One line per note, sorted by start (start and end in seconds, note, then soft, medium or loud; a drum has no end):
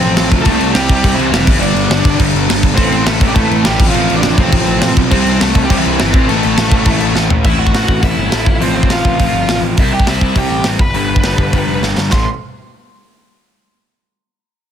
0.00 0.15 A1 loud
0.00 0.16 F2 loud
0.00 0.30 A2 loud
0.00 0.16 C3 loud
0.00 0.15 F3 loud
0.00 0.30 F3 loud
0.00 0.31 A3 loud
0.00 0.26 C4 loud
0.00 0.31 C4 loud
0.00 0.32 F4 loud
0.00 0.28 C5 medium
0.00 crash medium
0.16 0.30 A1 medium
0.16 0.45 F2 medium
0.16 0.45 C3 loud
0.16 0.45 F3 loud
0.16 snare loud
0.16 crash medium
0.31 0.44 D2 medium
0.31 kick medium
0.31 crash medium
0.42 1.46 C3 loud
0.42 0.73 A3 medium
0.42 0.72 A4 loud
0.42 kick loud
0.42 crash medium
0.46 0.58 C2 medium
0.46 0.74 C3 medium
0.46 1.47 G3 loud
0.46 0.75 G3 loud
0.46 0.73 C4 loud
0.46 1.47 C4 loud
0.46 1.48 E4 loud
0.60 0.73 C2 medium
0.60 crash medium
0.73 0.86 C2 loud
0.73 1.02 C3 loud
0.73 1.03 G3 loud
0.73 1.04 C4 loud
0.73 0.92 G4 loud
0.73 snare loud
0.73 crash medium
0.77 0.96 G3 medium
0.89 1.01 C2 loud
0.89 kick loud
0.89 crash medium
0.93 1.15 G4 medium
0.98 1.17 G3 medium
1.04 1.16 C2 medium
1.04 1.33 C3 loud
1.04 1.33 G3 loud
1.04 1.32 C4 loud
1.04 kick loud
1.04 crash medium
1.15 1.30 C2 loud
1.15 1.59 E3 medium
1.15 1.59 E4 loud
1.19 crash medium
1.31 1.44 F1 medium
1.31 1.47 C3 medium
1.31 1.47 G3 medium
1.31 1.47 C4 loud
1.31 snare loud
1.31 crash medium
1.47 1.59 G1 medium
1.47 2.62 G2 medium
1.47 2.63 D3 loud
1.47 2.63 G3 loud
1.47 2.63 B3 loud
1.47 2.64 D4 loud
1.47 kick loud
1.47 crash loud
1.60 1.73 G1 loud
1.60 1.90 G2 loud
1.60 1.89 D3 loud
1.60 1.89 G3 loud
1.60 2.15 D4 medium
1.60 2.16 D5 medium
1.60 crash medium
1.75 1.87 G1 loud
1.75 crash medium
1.90 2.02 G1 loud
1.90 2.17 G2 medium
1.90 2.18 D3 loud
1.90 2.19 G3 loud
1.90 snare loud
1.90 crash medium
2.05 2.17 G1 loud
2.05 kick loud
2.05 crash medium
2.19 2.31 G1 medium
2.19 2.47 G2 loud
2.19 2.47 D3 medium
2.19 2.46 G3 loud
2.19 kick loud
2.19 crash loud
2.34 2.46 G1 loud
2.34 crash medium
2.47 2.61 G1 loud
2.47 2.77 G2 medium
2.47 2.75 D3 medium
2.47 2.75 G3 loud
2.47 snare loud
2.47 crash loud
2.63 2.75 G1 medium
2.63 kick medium
2.63 crash medium
2.75 2.90 A1 loud
2.75 3.06 A2 medium
2.75 3.78 A2 medium
2.75 3.05 E3 loud
2.75 3.79 E3 loud
2.75 3.05 A3 loud
2.75 3.79 A3 loud
2.75 3.06 C4 loud
2.75 3.04 C5 medium
2.75 kick loud
2.75 crash loud
2.79 3.81 C4 loud
2.79 3.80 E4 loud
2.92 3.05 A1 medium
2.92 crash medium
3.05 3.19 A1 loud
3.05 3.34 A2 medium
3.05 3.35 E3 medium
3.05 3.35 A3 loud
3.05 3.27 A3 medium
3.05 3.27 A4 medium
3.05 snare loud
3.05 crash medium
3.21 3.34 A1 medium
3.21 kick loud
3.21 crash medium
3.27 3.35 G3 medium
3.27 3.34 G4 loud
3.34 3.48 A1 medium
3.34 3.65 A2 loud
3.34 3.64 E3 loud
3.34 3.62 A3 medium
3.34 3.63 A3 loud
3.34 3.64 A4 loud
3.34 kick loud
3.34 crash medium
3.51 3.63 A1 medium
3.51 crash medium
3.64 3.79 A1 loud
3.64 3.79 A2 medium
3.64 3.79 E3 medium
3.64 3.85 G3 medium
3.64 3.79 A3 loud
3.64 3.87 G4 loud
3.64 snare loud
3.64 crash medium
3.79 3.92 A1 loud
3.79 4.95 A2 loud
3.79 4.95 F3 loud
3.79 4.96 A3 loud
3.79 5.14 C4 loud
3.79 4.97 F4 loud
3.79 kick loud
3.79 crash loud
3.88 4.15 F3 medium
3.88 4.14 F4 loud
3.92 4.07 A1 loud
3.92 4.22 F2 loud
3.92 4.21 C3 loud
3.92 4.21 F3 loud
3.92 crash medium
4.10 4.22 A1 medium
4.10 crash medium
4.16 4.38 D4 loud
4.16 4.36 D5 medium
4.22 4.36 A1 loud
4.22 4.50 F2 medium
4.22 4.51 C3 loud
4.22 4.51 F3 loud
4.22 snare loud
4.22 crash medium
4.38 4.50 A1 loud
4.38 4.93 C4 medium
4.38 4.93 C5 medium
4.38 kick loud
4.38 crash medium
4.52 4.65 A1 loud
4.52 4.81 F2 loud
4.52 4.81 C3 loud
4.52 4.80 F3 loud
4.52 kick loud
4.52 crash loud
4.67 4.79 A1 loud
4.67 crash medium
4.81 4.94 A1 loud
4.81 5.10 F2 loud
4.81 5.09 C3 loud
4.81 5.10 F3 loud
4.81 snare loud
4.81 crash loud
4.97 5.09 B1 loud
4.97 kick loud
4.97 crash medium
5.11 5.23 C2 loud
5.11 5.40 C3 loud
5.11 6.12 C3 loud
5.11 6.13 E3 loud
5.11 5.40 G3 loud
5.11 6.13 G3 loud
5.11 5.38 C4 loud
5.11 5.39 C4 loud
5.11 6.15 C4 loud
5.11 5.38 C5 medium
5.11 kick loud
5.11 crash loud
5.15 6.16 E4 loud
5.26 5.38 C2 medium
5.26 crash medium
5.40 5.52 C2 loud
5.40 5.68 C3 loud
5.40 5.68 G3 loud
5.40 5.61 A3 medium
5.40 5.70 C4 loud
5.40 5.63 A4 medium
5.40 snare loud
5.40 crash loud
5.55 5.67 C2 loud
5.55 kick loud
5.55 crash medium
5.64 5.70 G3 medium
5.64 5.70 G4 medium
5.69 5.82 C2 medium
5.69 5.98 C3 loud
5.69 5.97 G3 loud
5.69 5.77 G3 medium
5.69 5.98 C4 loud
5.69 5.78 G4 loud
5.69 kick loud
5.69 crash loud
5.78 5.97 E3 medium
5.78 5.99 E4 medium
5.85 5.97 C2 loud
5.85 crash medium
5.98 6.12 G1 loud
5.98 6.12 C3 medium
5.98 6.26 E3 medium
5.98 6.12 G3 loud
5.98 6.29 C4 loud
5.98 6.29 E4 medium
5.98 snare loud
5.98 crash medium
6.13 6.26 A1 medium
6.13 7.29 A2 loud
6.13 7.29 E3 medium
6.13 7.30 A3 loud
6.13 7.30 C4 loud
6.13 7.30 E4 loud
6.13 kick loud
6.13 crash medium
6.28 6.41 A1 loud
6.28 6.57 A2 medium
6.28 6.57 E3 medium
6.28 7.11 A3 medium
6.28 6.56 A3 loud
6.28 7.11 A4 medium
6.28 crash medium
6.43 6.55 A1 loud
6.43 crash medium
6.57 6.69 A1 loud
6.57 6.85 A2 medium
6.57 6.85 E3 loud
6.57 6.86 A3 loud
6.57 snare loud
6.57 crash medium
6.72 6.84 A1 loud
6.72 kick loud
6.72 crash medium
6.85 6.98 A1 medium
6.85 7.14 A2 loud
6.85 7.14 E3 loud
6.85 7.14 A3 loud
6.85 kick loud
6.85 crash loud
7.00 7.12 A1 medium
7.00 crash medium
7.15 7.27 A1 loud
7.15 7.42 A2 medium
7.15 7.42 E3 loud
7.15 7.43 A3 loud
7.15 snare medium
7.30 7.42 A1 medium
7.30 floor tom loud
7.43 7.56 A1 medium
7.43 7.74 A2 medium
7.43 8.44 A2 medium
7.43 7.73 E3 medium
7.43 8.46 E3 medium
7.43 7.73 A3 loud
7.43 8.46 A3 medium
7.43 7.59 E4 medium
7.43 7.60 E5 medium
7.43 kick loud
7.43 crash loud
7.47 8.48 C4 loud
7.47 8.47 E4 loud
7.59 7.70 A1 medium
7.59 8.00 F#4 medium
7.59 8.04 F#5 medium
7.67 kick medium
7.73 7.84 A1 medium
7.73 8.01 A2 medium
7.73 8.01 E3 medium
7.73 8.02 A3 medium
7.73 snare loud
7.73 open hi-hat medium
7.88 7.99 A1 medium
7.88 kick loud
8.02 8.14 A1 medium
8.02 8.31 A2 loud
8.02 8.30 E3 loud
8.02 8.29 A3 loud
8.02 8.58 E4 medium
8.02 8.58 E5 medium
8.02 kick loud
8.02 open hi-hat medium
8.17 8.28 G1 loud
8.30 8.46 A1 loud
8.30 8.46 A2 medium
8.30 8.45 E3 medium
8.30 8.45 A3 medium
8.30 snare loud
8.30 open hi-hat medium
8.45 8.58 A1 medium
8.45 9.62 A2 loud
8.45 9.63 F3 medium
8.45 9.63 A3 loud
8.45 9.64 C4 loud
8.45 9.64 F4 loud
8.45 kick loud
8.60 8.72 A1 medium
8.60 8.89 F2 medium
8.60 8.89 C3 loud
8.60 8.88 F3 loud
8.60 8.75 C4 medium
8.60 8.76 C5 loud
8.60 open hi-hat medium
8.75 8.87 A1 medium
8.75 8.90 C4 medium
8.75 8.91 C5 medium
8.83 kick medium
8.89 9.01 A1 medium
8.89 9.17 F2 medium
8.89 9.17 C3 medium
8.89 9.18 F3 loud
8.89 9.60 F4 medium
8.89 9.60 F5 medium
8.89 snare loud
8.89 open hi-hat medium
9.05 9.16 A1 medium
9.05 kick loud
9.18 9.31 A1 medium
9.18 9.47 F2 medium
9.18 9.47 C3 loud
9.18 9.46 F3 loud
9.18 kick loud
9.18 open hi-hat medium
9.32 9.44 G1 medium
9.48 9.60 A1 medium
9.48 9.77 F2 medium
9.48 9.76 C3 medium
9.48 9.77 F3 medium
9.48 snare loud
9.48 open hi-hat medium
9.62 9.74 A1 medium
9.77 9.90 C2 medium
9.77 10.07 C3 medium
9.77 10.07 G3 medium
9.77 10.06 C4 medium
9.77 9.93 E4 medium
9.77 9.93 E5 loud
9.77 kick loud
9.77 open hi-hat medium
9.93 10.04 C2 loud
9.93 10.07 G4 medium
9.93 10.07 G5 loud
10.00 kick medium
10.07 10.19 C2 medium
10.07 10.33 C3 medium
10.07 10.34 G3 medium
10.07 10.34 C4 loud
10.07 10.21 E4 medium
10.07 10.21 E5 medium
10.07 snare loud
10.07 open hi-hat medium
10.21 10.33 C2 medium
10.21 10.36 E4 medium
10.21 10.37 E5 medium
10.21 kick medium
10.35 10.48 C2 medium
10.35 10.64 C3 medium
10.35 10.64 G3 medium
10.35 10.63 C4 loud
10.35 10.64 G4 medium
10.35 10.65 G5 loud
10.35 kick loud
10.35 open hi-hat medium
10.50 10.62 A1 medium
10.64 10.76 A1 medium
10.64 10.79 C3 medium
10.64 10.79 G3 medium
10.64 10.79 C4 medium
10.64 snare loud
10.64 open hi-hat medium
10.79 10.91 G1 medium
10.79 10.94 B4 medium
10.79 10.94 B5 loud
10.79 kick loud
10.94 11.06 G1 medium
10.94 11.22 G2 medium
10.94 11.22 D3 medium
10.94 11.21 G3 loud
10.94 11.80 B4 medium
10.94 11.80 B5 loud
10.94 open hi-hat medium
11.09 11.20 G1 medium
11.16 kick medium
11.22 11.35 G1 medium
11.22 11.51 G2 medium
11.22 11.52 D3 medium
11.22 11.52 G3 medium
11.22 snare loud
11.22 open hi-hat medium
11.38 11.50 G1 medium
11.38 kick medium
11.52 11.65 G1 medium
11.52 11.82 G2 medium
11.52 11.82 D3 loud
11.52 11.81 G3 loud
11.52 kick loud
11.52 open hi-hat medium
11.66 11.79 F1 medium
11.82 11.94 G1 medium
11.82 12.12 G2 medium
11.82 12.10 D3 medium
11.82 12.11 G3 medium
11.82 snare medium
11.97 12.09 G1 medium
11.97 snare medium
12.10 12.27 A1 loud
12.10 12.23 A2 medium
12.10 12.24 E3 loud
12.10 12.24 A3 medium
12.10 12.26 C6 medium
12.10 kick loud
12.10 snare loud
12.10 ride bell medium